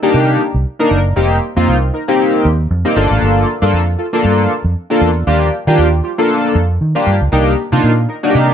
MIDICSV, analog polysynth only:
0, 0, Header, 1, 2, 480
1, 0, Start_track
1, 0, Tempo, 512821
1, 1095, Time_signature, 4, 2, 24, 8
1, 7992, End_track
2, 0, Start_track
2, 0, Title_t, "Analog polysynth"
2, 0, Program_c, 0, 90
2, 23, Note_on_c, 0, 58, 94
2, 26, Note_on_c, 0, 62, 81
2, 27, Note_on_c, 0, 63, 84
2, 30, Note_on_c, 0, 67, 104
2, 386, Note_off_c, 0, 58, 0
2, 387, Note_off_c, 0, 62, 0
2, 388, Note_off_c, 0, 63, 0
2, 389, Note_off_c, 0, 67, 0
2, 743, Note_on_c, 0, 58, 89
2, 745, Note_on_c, 0, 62, 81
2, 747, Note_on_c, 0, 63, 76
2, 750, Note_on_c, 0, 70, 96
2, 926, Note_off_c, 0, 58, 0
2, 927, Note_off_c, 0, 62, 0
2, 928, Note_off_c, 0, 63, 0
2, 929, Note_off_c, 0, 70, 0
2, 1086, Note_on_c, 0, 58, 85
2, 1089, Note_on_c, 0, 60, 76
2, 1091, Note_on_c, 0, 63, 77
2, 1093, Note_on_c, 0, 67, 94
2, 1283, Note_off_c, 0, 58, 0
2, 1285, Note_off_c, 0, 60, 0
2, 1285, Note_off_c, 0, 63, 0
2, 1286, Note_off_c, 0, 67, 0
2, 1464, Note_on_c, 0, 58, 90
2, 1465, Note_on_c, 0, 60, 78
2, 1468, Note_on_c, 0, 63, 79
2, 1470, Note_on_c, 0, 65, 97
2, 1646, Note_off_c, 0, 58, 0
2, 1647, Note_off_c, 0, 60, 0
2, 1648, Note_off_c, 0, 63, 0
2, 1650, Note_off_c, 0, 65, 0
2, 1811, Note_on_c, 0, 63, 89
2, 1818, Note_on_c, 0, 70, 101
2, 1882, Note_off_c, 0, 63, 0
2, 1886, Note_off_c, 0, 70, 0
2, 1947, Note_on_c, 0, 58, 91
2, 1949, Note_on_c, 0, 60, 83
2, 1952, Note_on_c, 0, 63, 77
2, 1954, Note_on_c, 0, 67, 101
2, 2308, Note_off_c, 0, 58, 0
2, 2309, Note_off_c, 0, 60, 0
2, 2310, Note_off_c, 0, 63, 0
2, 2311, Note_off_c, 0, 67, 0
2, 2666, Note_on_c, 0, 58, 85
2, 2668, Note_on_c, 0, 60, 83
2, 2671, Note_on_c, 0, 63, 81
2, 2673, Note_on_c, 0, 67, 96
2, 2759, Note_off_c, 0, 58, 0
2, 2770, Note_on_c, 0, 58, 89
2, 2773, Note_on_c, 0, 62, 85
2, 2774, Note_off_c, 0, 60, 0
2, 2776, Note_off_c, 0, 63, 0
2, 2776, Note_on_c, 0, 65, 86
2, 2777, Note_off_c, 0, 67, 0
2, 2778, Note_on_c, 0, 69, 101
2, 3253, Note_off_c, 0, 58, 0
2, 3254, Note_off_c, 0, 62, 0
2, 3255, Note_off_c, 0, 65, 0
2, 3256, Note_off_c, 0, 69, 0
2, 3385, Note_on_c, 0, 58, 84
2, 3387, Note_on_c, 0, 62, 77
2, 3390, Note_on_c, 0, 65, 80
2, 3392, Note_on_c, 0, 69, 96
2, 3567, Note_off_c, 0, 58, 0
2, 3568, Note_off_c, 0, 62, 0
2, 3569, Note_off_c, 0, 65, 0
2, 3570, Note_off_c, 0, 69, 0
2, 3729, Note_on_c, 0, 65, 91
2, 3736, Note_on_c, 0, 69, 100
2, 3802, Note_off_c, 0, 65, 0
2, 3805, Note_off_c, 0, 69, 0
2, 3865, Note_on_c, 0, 58, 91
2, 3868, Note_on_c, 0, 62, 83
2, 3871, Note_on_c, 0, 65, 84
2, 3873, Note_on_c, 0, 69, 94
2, 4227, Note_off_c, 0, 58, 0
2, 4228, Note_off_c, 0, 62, 0
2, 4229, Note_off_c, 0, 65, 0
2, 4231, Note_off_c, 0, 69, 0
2, 4587, Note_on_c, 0, 58, 84
2, 4589, Note_on_c, 0, 62, 84
2, 4593, Note_on_c, 0, 65, 77
2, 4594, Note_on_c, 0, 69, 96
2, 4768, Note_off_c, 0, 58, 0
2, 4769, Note_off_c, 0, 62, 0
2, 4771, Note_off_c, 0, 65, 0
2, 4771, Note_off_c, 0, 69, 0
2, 4931, Note_on_c, 0, 58, 87
2, 4932, Note_on_c, 0, 62, 77
2, 4935, Note_on_c, 0, 65, 80
2, 4939, Note_on_c, 0, 67, 95
2, 5126, Note_off_c, 0, 58, 0
2, 5126, Note_off_c, 0, 62, 0
2, 5127, Note_off_c, 0, 65, 0
2, 5130, Note_off_c, 0, 67, 0
2, 5307, Note_on_c, 0, 58, 88
2, 5310, Note_on_c, 0, 62, 84
2, 5314, Note_on_c, 0, 65, 84
2, 5315, Note_on_c, 0, 67, 98
2, 5488, Note_off_c, 0, 58, 0
2, 5489, Note_off_c, 0, 62, 0
2, 5491, Note_off_c, 0, 65, 0
2, 5492, Note_off_c, 0, 67, 0
2, 5650, Note_on_c, 0, 65, 84
2, 5658, Note_on_c, 0, 67, 92
2, 5722, Note_off_c, 0, 65, 0
2, 5726, Note_off_c, 0, 67, 0
2, 5786, Note_on_c, 0, 58, 84
2, 5789, Note_on_c, 0, 62, 80
2, 5791, Note_on_c, 0, 65, 79
2, 5794, Note_on_c, 0, 69, 96
2, 6147, Note_off_c, 0, 58, 0
2, 6149, Note_off_c, 0, 62, 0
2, 6150, Note_off_c, 0, 65, 0
2, 6151, Note_off_c, 0, 69, 0
2, 6506, Note_on_c, 0, 58, 83
2, 6508, Note_on_c, 0, 62, 74
2, 6511, Note_on_c, 0, 65, 74
2, 6513, Note_on_c, 0, 67, 98
2, 6687, Note_off_c, 0, 58, 0
2, 6688, Note_off_c, 0, 62, 0
2, 6690, Note_off_c, 0, 65, 0
2, 6691, Note_off_c, 0, 67, 0
2, 6851, Note_on_c, 0, 58, 92
2, 6853, Note_on_c, 0, 62, 75
2, 6856, Note_on_c, 0, 63, 81
2, 6859, Note_on_c, 0, 67, 99
2, 7046, Note_off_c, 0, 58, 0
2, 7047, Note_off_c, 0, 62, 0
2, 7048, Note_off_c, 0, 63, 0
2, 7050, Note_off_c, 0, 67, 0
2, 7226, Note_on_c, 0, 58, 88
2, 7227, Note_on_c, 0, 62, 85
2, 7230, Note_on_c, 0, 63, 78
2, 7233, Note_on_c, 0, 65, 94
2, 7407, Note_off_c, 0, 58, 0
2, 7408, Note_off_c, 0, 62, 0
2, 7410, Note_off_c, 0, 63, 0
2, 7411, Note_off_c, 0, 65, 0
2, 7568, Note_on_c, 0, 63, 85
2, 7577, Note_on_c, 0, 70, 97
2, 7641, Note_off_c, 0, 63, 0
2, 7645, Note_off_c, 0, 70, 0
2, 7704, Note_on_c, 0, 58, 90
2, 7707, Note_on_c, 0, 62, 80
2, 7710, Note_on_c, 0, 63, 83
2, 7711, Note_on_c, 0, 66, 78
2, 7761, Note_off_c, 0, 66, 0
2, 7769, Note_on_c, 0, 67, 97
2, 7992, Note_off_c, 0, 58, 0
2, 7992, Note_off_c, 0, 62, 0
2, 7992, Note_off_c, 0, 63, 0
2, 7992, Note_off_c, 0, 67, 0
2, 7992, End_track
0, 0, End_of_file